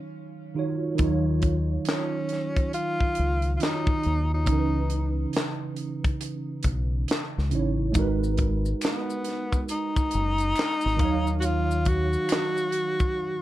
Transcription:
0.00 0.50 D#3 medium
0.00 0.53 F#3 medium
0.00 0.13 C#4 medium
0.00 0.51 D#4 medium
0.00 0.55 C#5 medium
0.00 0.52 F5 medium
0.54 0.94 D#3 medium
0.54 0.96 D#4 medium
0.54 0.98 F4 medium
0.54 1.00 F#4 medium
0.59 1.01 C#5 medium
0.95 3.54 D#3 medium
0.95 3.55 D#4 medium
0.95 closed hi-hat medium
0.99 1.77 D#2 loud
0.99 3.57 F#3 medium
0.99 3.56 F4 medium
0.99 kick loud
1.04 3.59 C#5 medium
1.42 kick medium
1.42 closed hi-hat medium
1.85 2.70 C#4 medium
1.85 snare loud
1.85 closed hi-hat medium
1.90 clap medium
2.29 snare soft
2.29 closed hi-hat medium
2.57 kick medium
2.57 closed hi-hat soft
2.73 3.51 F4 loud
2.73 closed hi-hat medium
3.00 kick medium
3.15 closed hi-hat medium
3.19 3.57 C#2 medium
3.42 closed hi-hat soft
3.57 4.46 D#3 soft
3.57 4.47 D#4 soft
3.57 3.64 F4 medium
3.57 closed hi-hat medium
3.61 4.32 D#4 loud
3.61 4.48 F4 soft
3.61 4.48 F#4 soft
3.61 4.49 C#5 soft
3.61 snare loud
3.61 clap medium
3.87 kick loud
4.03 4.49 D#2 medium
4.03 closed hi-hat soft
4.34 5.16 D#4 medium
4.44 7.46 C#3 medium
4.44 7.47 C#4 medium
4.44 kick loud
4.44 closed hi-hat medium
4.48 5.25 C#2 loud
4.48 7.49 E3 medium
4.48 7.48 D#4 medium
4.53 4.58 A#4 medium
4.59 7.53 B4 medium
4.90 closed hi-hat medium
5.33 snare loud
5.33 closed hi-hat medium
5.38 clap medium
5.76 closed hi-hat medium
6.04 kick medium
6.04 closed hi-hat soft
6.21 closed hi-hat medium
6.63 7.04 B1 medium
6.63 kick medium
6.63 closed hi-hat medium
7.08 snare loud
7.08 closed hi-hat medium
7.12 clap medium
7.38 7.54 C#2 medium
7.38 snare soft
7.50 7.91 A1 medium
7.50 7.94 C#3 medium
7.50 7.95 C#4 medium
7.50 7.93 D#4 medium
7.50 7.96 E4 medium
7.50 closed hi-hat medium
7.55 7.97 C#5 medium
7.92 10.94 G#3 medium
7.92 10.95 D#4 medium
7.92 kick loud
7.92 closed hi-hat medium
7.92 maracas medium
7.96 8.73 G#1 loud
7.96 10.96 F#4 medium
7.96 10.97 A#4 medium
8.01 10.98 B4 medium
8.24 maracas soft
8.37 kick medium
8.37 closed hi-hat medium
8.66 maracas soft
8.81 9.66 B3 medium
8.81 finger snap medium
8.81 snare loud
8.81 closed hi-hat medium
8.81 maracas medium
8.86 clap medium
9.10 maracas soft
9.24 snare soft
9.24 closed hi-hat medium
9.52 kick medium
9.52 maracas soft
9.69 11.35 D#4 loud
9.69 closed hi-hat medium
9.69 maracas medium
9.96 kick medium
9.96 maracas soft
10.11 10.52 F#1 medium
10.11 closed hi-hat medium
10.11 maracas soft
10.38 closed hi-hat soft
10.38 maracas soft
10.56 finger snap medium
10.56 snare loud
10.56 closed hi-hat medium
10.56 maracas medium
10.60 clap medium
10.81 maracas soft
10.86 10.99 G#1 medium
10.86 snare soft
10.96 13.11 D#3 medium
10.96 13.12 D#4 medium
10.96 kick medium
10.96 closed hi-hat soft
11.01 12.16 D#2 medium
11.01 13.14 F#3 medium
11.01 13.13 F5 medium
11.05 13.15 C#5 medium
11.27 maracas soft
11.40 11.47 F#4 medium
11.40 closed hi-hat medium
11.40 maracas medium
11.45 11.90 F4 loud
11.71 maracas soft
11.85 13.42 F#4 loud
11.85 kick loud
11.85 closed hi-hat medium
12.13 maracas soft
12.29 finger snap medium
12.29 snare loud
12.29 closed hi-hat medium
12.29 maracas medium
12.33 clap medium
12.57 maracas soft
12.72 closed hi-hat medium
13.00 kick medium
13.00 maracas soft

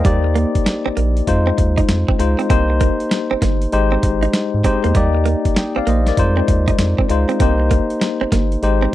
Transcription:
0.00 0.24 C5 medium
0.00 0.23 D#5 medium
0.04 0.46 D#2 loud
0.04 0.18 G3 medium
0.04 1.20 A#3 medium
0.04 1.21 D#4 medium
0.04 1.21 G4 medium
0.04 1.21 D5 loud
0.04 kick loud
0.04 closed hi-hat medium
0.24 muted clean electric guitar stroke soft
0.35 0.49 A#3 medium
0.35 closed hi-hat medium
0.55 kick medium
0.55 closed hi-hat soft
0.66 muted clean electric guitar stroke soft
0.66 snare loud
0.66 closed hi-hat medium
0.86 0.91 A#1 soft
0.86 0.93 C4 medium
0.97 1.22 A#1 loud
0.97 1.10 A#3 medium
0.97 closed hi-hat medium
1.17 closed hi-hat soft
1.27 1.52 F2 loud
1.27 2.14 G#3 medium
1.27 2.14 D#4 medium
1.27 2.15 F4 medium
1.27 2.15 C5 loud
1.27 kick medium
1.27 closed hi-hat medium
1.47 1.54 C4 medium
1.58 1.83 D#2 medium
1.58 muted clean electric guitar stroke soft
1.58 kick loud
1.58 closed hi-hat medium
1.77 1.85 D#4 medium
1.77 kick medium
1.77 closed hi-hat soft
1.89 2.05 F2 medium
1.89 snare loud
1.89 closed hi-hat medium
2.08 2.16 C4 medium
2.08 kick loud
2.19 2.35 C#2 medium
2.19 2.48 G#3 medium
2.19 2.48 D#4 medium
2.19 2.49 F4 medium
2.19 2.49 C5 medium
2.19 muted clean electric guitar stroke soft
2.19 closed hi-hat medium
2.39 2.46 C4 medium
2.39 closed hi-hat medium
2.50 2.91 C2 loud
2.50 3.66 A#3 medium
2.50 2.63 C4 medium
2.50 3.66 D#4 medium
2.50 3.66 G4 medium
2.50 3.66 C5 loud
2.50 kick loud
2.50 closed hi-hat medium
2.70 muted clean electric guitar stroke soft
2.81 2.94 A#3 medium
2.81 kick medium
2.81 closed hi-hat medium
3.00 closed hi-hat soft
3.11 muted clean electric guitar stroke soft
3.11 snare loud
3.11 closed hi-hat medium
3.31 3.36 G1 soft
3.31 3.38 C4 medium
3.42 3.67 G1 loud
3.42 3.55 A#3 medium
3.42 kick medium
3.42 snare medium
3.42 closed hi-hat medium
3.62 closed hi-hat medium
3.72 3.97 G#1 loud
3.72 4.59 G#3 medium
3.72 4.59 D#4 medium
3.72 4.60 G4 medium
3.72 4.60 C5 loud
3.72 closed hi-hat medium
3.92 3.99 C4 medium
4.03 4.28 G#1 medium
4.03 muted clean electric guitar stroke soft
4.03 kick loud
4.03 closed hi-hat medium
4.23 4.30 D#4 medium
4.23 closed hi-hat medium
4.33 muted clean electric guitar stroke soft
4.33 snare loud
4.33 closed hi-hat medium
4.54 4.63 G#2 medium
4.64 4.93 G#3 medium
4.64 4.78 C4 medium
4.64 4.93 D#4 medium
4.64 4.94 G4 medium
4.64 4.94 C5 medium
4.64 kick medium
4.64 closed hi-hat medium
4.84 4.93 E2 medium
4.84 4.91 A#3 medium
4.84 closed hi-hat soft
4.95 5.35 D#2 loud
4.95 5.08 G3 medium
4.95 6.11 A#3 medium
4.95 6.11 D#4 medium
4.95 6.11 G4 medium
4.95 5.57 D5 medium
4.95 kick loud
4.95 closed hi-hat medium
5.15 muted clean electric guitar stroke soft
5.26 5.39 A#3 medium
5.26 closed hi-hat medium
5.45 kick medium
5.45 closed hi-hat soft
5.56 5.76 D#5 medium
5.56 5.75 G5 medium
5.56 muted clean electric guitar stroke soft
5.56 snare loud
5.56 closed hi-hat medium
5.76 5.81 A#1 soft
5.76 5.83 C4 medium
5.76 5.87 D5 medium
5.76 5.87 F5 medium
5.87 6.12 A#1 loud
5.87 6.00 A#3 medium
5.87 6.07 C5 medium
5.87 6.06 D#5 medium
5.87 closed hi-hat medium
6.06 6.37 A#4 medium
6.06 6.36 D5 medium
6.06 snare medium
6.06 closed hi-hat soft
6.17 6.42 F2 loud
6.17 6.26 G3 medium
6.17 7.05 D#4 medium
6.17 7.05 F4 medium
6.17 7.05 C5 loud
6.17 kick medium
6.17 closed hi-hat medium
6.25 7.08 G#3 medium
6.37 6.44 C4 medium
6.48 6.73 D#2 medium
6.48 muted clean electric guitar stroke soft
6.48 kick loud
6.48 closed hi-hat medium
6.68 6.75 D#4 medium
6.68 kick medium
6.68 closed hi-hat soft
6.79 6.95 F2 medium
6.79 snare loud
6.79 closed hi-hat medium
6.98 7.06 C4 medium
6.98 kick medium
7.09 7.25 C#2 medium
7.09 7.38 G#3 medium
7.09 7.39 D#4 medium
7.09 7.39 F4 medium
7.09 7.39 C5 medium
7.09 muted clean electric guitar stroke soft
7.09 closed hi-hat medium
7.29 7.36 C4 medium
7.29 closed hi-hat soft
7.40 7.80 C2 loud
7.40 8.56 A#3 medium
7.40 7.53 C4 medium
7.40 8.56 D#4 medium
7.40 8.56 G4 medium
7.40 8.57 C5 loud
7.40 kick loud
7.40 closed hi-hat medium
7.60 muted clean electric guitar stroke soft
7.71 7.84 A#3 medium
7.71 kick medium
7.71 closed hi-hat medium
7.90 closed hi-hat medium
8.01 muted clean electric guitar stroke soft
8.01 snare loud
8.01 closed hi-hat medium
8.21 8.26 G1 soft
8.21 8.28 C4 medium
8.32 8.56 G1 loud
8.32 8.45 A#3 medium
8.32 kick medium
8.32 snare medium
8.32 closed hi-hat medium
8.52 closed hi-hat soft
8.63 8.87 G#1 loud
8.63 8.95 G#3 medium
8.63 8.95 D#4 medium
8.63 8.93 G4 medium
8.63 8.94 C5 medium
8.63 closed hi-hat medium
8.82 8.90 C4 medium

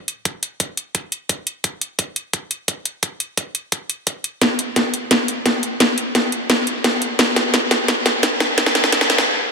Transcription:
0.08 closed hi-hat medium
0.25 kick loud
0.25 closed hi-hat medium
0.43 closed hi-hat medium
0.60 kick loud
0.60 closed hi-hat loud
0.77 closed hi-hat medium
0.95 kick loud
0.95 closed hi-hat loud
1.12 closed hi-hat medium
1.29 kick loud
1.29 closed hi-hat loud
1.47 closed hi-hat medium
1.64 kick loud
1.64 closed hi-hat medium
1.81 closed hi-hat medium
1.99 kick loud
1.99 closed hi-hat medium
2.16 closed hi-hat medium
2.33 kick medium
2.33 closed hi-hat medium
2.51 closed hi-hat medium
2.68 kick medium
2.68 closed hi-hat loud
2.85 closed hi-hat medium
3.03 kick loud
3.03 closed hi-hat medium
3.20 closed hi-hat medium
3.37 kick loud
3.37 closed hi-hat medium
3.55 closed hi-hat medium
3.72 kick loud
3.72 closed hi-hat medium
3.90 closed hi-hat medium
4.07 kick loud
4.07 closed hi-hat medium
4.24 closed hi-hat medium
4.42 kick loud
4.42 snare soft
4.42 closed hi-hat medium
4.59 closed hi-hat medium
4.76 kick loud
4.76 snare soft
4.76 closed hi-hat medium
4.94 closed hi-hat medium
5.11 kick medium
5.11 snare medium
5.11 closed hi-hat medium
5.28 closed hi-hat medium
5.46 kick loud
5.46 snare medium
5.46 closed hi-hat medium
5.63 closed hi-hat medium
5.80 kick loud
5.80 snare medium
5.80 closed hi-hat medium
5.98 closed hi-hat medium
6.15 kick loud
6.15 snare medium
6.15 closed hi-hat medium
6.32 closed hi-hat medium
6.50 kick loud
6.50 snare medium
6.50 closed hi-hat medium
6.67 closed hi-hat medium
6.84 kick loud
6.84 snare medium
6.84 closed hi-hat medium
7.02 closed hi-hat medium
7.19 kick loud
7.19 snare medium
7.19 closed hi-hat medium
7.36 snare medium
7.36 closed hi-hat medium
7.54 kick loud
7.54 snare medium
7.54 closed hi-hat medium
7.71 snare medium
7.71 closed hi-hat medium
7.88 kick loud
7.88 snare medium
7.88 closed hi-hat medium
8.06 snare medium
8.06 closed hi-hat medium
8.23 kick loud
8.23 snare medium
8.23 closed hi-hat medium
8.40 snare medium
8.40 closed hi-hat medium
8.58 kick loud
8.58 snare loud
8.58 closed hi-hat medium
8.66 snare medium
8.75 snare medium
8.75 closed hi-hat medium
8.84 snare medium
8.92 kick loud
8.92 snare loud
8.92 closed hi-hat medium
9.01 snare medium
9.10 snare loud
9.10 closed hi-hat medium
9.18 snare medium

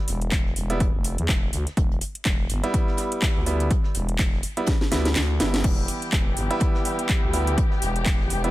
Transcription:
0.08 0.30 E1 loud
0.08 snare soft
0.08 closed hi-hat medium
0.08 open hi-hat loud
0.22 closed hi-hat soft
0.31 0.54 E1 loud
0.31 kick loud
0.31 snare loud
0.31 clap loud
0.31 closed hi-hat medium
0.46 snare soft
0.56 0.92 E1 loud
0.56 closed hi-hat medium
0.56 open hi-hat medium
0.70 0.82 G3 medium
0.70 0.82 B3 medium
0.70 0.82 E4 loud
0.70 closed hi-hat medium
0.80 kick loud
0.80 closed hi-hat medium
0.94 1.16 F1 medium
1.04 closed hi-hat medium
1.04 open hi-hat loud
1.18 1.27 E2 medium
1.18 closed hi-hat medium
1.28 1.51 E1 loud
1.28 kick loud
1.28 snare loud
1.28 clap loud
1.28 closed hi-hat medium
1.53 1.64 D2 loud
1.53 closed hi-hat medium
1.53 open hi-hat medium
1.67 snare soft
1.67 closed hi-hat medium
1.77 2.00 E1 loud
1.77 kick loud
1.77 closed hi-hat medium
1.92 closed hi-hat soft
2.01 closed hi-hat medium
2.01 open hi-hat loud
2.15 closed hi-hat medium
2.25 2.48 E1 medium
2.25 kick loud
2.25 snare loud
2.25 clap loud
2.25 closed hi-hat medium
2.49 2.61 G1 loud
2.49 closed hi-hat medium
2.49 open hi-hat medium
2.63 3.44 G3 loud
2.63 3.44 B3 medium
2.63 3.44 E4 loud
2.63 closed hi-hat medium
2.74 kick loud
2.74 closed hi-hat medium
2.88 snare medium
2.97 snare medium
2.97 closed hi-hat medium
2.97 open hi-hat loud
3.12 closed hi-hat medium
3.22 kick loud
3.22 snare loud
3.22 clap loud
3.22 closed hi-hat medium
3.36 3.69 D2 medium
3.46 3.69 G3 medium
3.46 3.69 B3 medium
3.46 3.69 E4 medium
3.46 closed hi-hat medium
3.46 open hi-hat medium
3.60 closed hi-hat soft
3.60 closed hi-hat medium
3.71 kick loud
3.71 closed hi-hat medium
3.84 snare soft
3.94 4.17 E1 loud
3.94 snare soft
3.94 closed hi-hat medium
3.94 open hi-hat loud
4.09 closed hi-hat medium
4.19 4.42 E1 medium
4.19 kick loud
4.19 snare loud
4.19 clap loud
4.19 closed hi-hat loud
4.19 closed hi-hat medium
4.33 snare soft
4.43 closed hi-hat medium
4.43 open hi-hat medium
4.57 4.69 G3 medium
4.57 4.69 B3 medium
4.57 4.69 E4 medium
4.57 closed hi-hat medium
4.66 kick loud
4.66 snare medium
4.66 closed hi-hat medium
4.81 snare medium
4.91 5.14 D2 medium
4.91 5.07 G3 medium
4.91 5.07 B3 medium
4.91 5.07 E4 loud
4.91 snare medium
4.91 closed hi-hat medium
4.91 open hi-hat loud
5.05 snare medium
5.05 closed hi-hat medium
5.16 5.38 D2 loud
5.16 snare medium
5.16 snare loud
5.16 clap loud
5.16 closed hi-hat medium
5.40 5.63 G1 loud
5.40 6.47 G3 medium
5.40 6.47 B3 medium
5.40 6.47 E4 medium
5.40 snare medium
5.40 closed hi-hat medium
5.40 open hi-hat medium
5.53 snare soft
5.53 snare medium
5.53 closed hi-hat medium
5.64 5.87 E1 loud
5.64 8.51 E3 medium
5.64 8.51 B3 medium
5.64 8.51 G4 medium
5.64 kick loud
5.64 closed hi-hat medium
5.64 crash medium
5.78 closed hi-hat soft
5.88 closed hi-hat medium
5.88 open hi-hat loud
6.02 closed hi-hat medium
6.12 6.35 E1 medium
6.12 kick loud
6.12 snare loud
6.12 clap loud
6.12 closed hi-hat medium
6.37 6.48 G1 loud
6.37 closed hi-hat medium
6.37 open hi-hat medium
6.50 7.31 G3 medium
6.50 7.31 B3 medium
6.50 7.31 E4 loud
6.50 closed hi-hat medium
6.60 kick loud
6.60 closed hi-hat medium
6.75 snare medium
6.85 closed hi-hat medium
6.85 open hi-hat loud
6.99 closed hi-hat medium
7.09 kick loud
7.09 snare loud
7.09 clap loud
7.09 closed hi-hat medium
7.23 7.56 D2 loud
7.33 7.56 G3 medium
7.33 7.56 B3 medium
7.33 7.56 E4 medium
7.33 closed hi-hat medium
7.33 open hi-hat medium
7.47 closed hi-hat soft
7.47 closed hi-hat medium
7.58 kick loud
7.58 closed hi-hat medium
7.72 snare soft
7.82 8.04 E1 loud
7.82 snare soft
7.82 closed hi-hat medium
7.82 open hi-hat loud
7.96 closed hi-hat medium
8.05 8.29 E1 medium
8.05 kick loud
8.05 snare loud
8.05 clap loud
8.05 closed hi-hat medium
8.21 snare soft
8.29 8.51 E1 loud
8.29 closed hi-hat medium
8.29 open hi-hat loud
8.44 8.51 G3 medium
8.44 8.51 B3 medium
8.44 8.51 E4 loud
8.44 closed hi-hat medium

